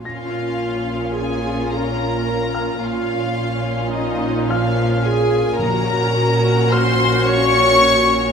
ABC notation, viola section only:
X:1
M:5/4
L:1/8
Q:1/4=108
K:Bbm
V:1 name="Viola section"
F4 A2 B4 | F4 E2 F,2 A2 | B4 c2 d4 |]